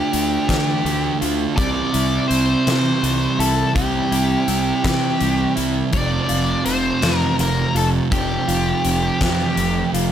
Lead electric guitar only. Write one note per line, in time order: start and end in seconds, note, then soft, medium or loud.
0.00 1.17 G4 medium
1.57 2.27 D5 loud
2.28 3.41 C5 loud
3.40 3.73 A4 medium
3.75 5.53 G4 medium
5.94 6.65 D5 loud
6.66 7.17 C5 loud
7.17 7.35 A#4 loud
7.41 7.76 A#4 medium
7.77 7.86 A4 medium
8.12 9.90 G4 medium